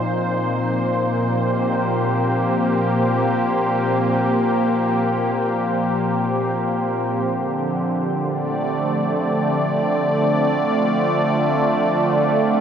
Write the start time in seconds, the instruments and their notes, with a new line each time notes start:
Already playing: analog synth pad A#2 A#3 D#4 F4 C5, synth drone F3 C4
1.19 analog synth pad G4
7.22 analog synth pad D3
8.15 analog synth pad D5
8.31 analog synth pad A3
8.81 analog synth pad C4
10.39 analog synth pad F4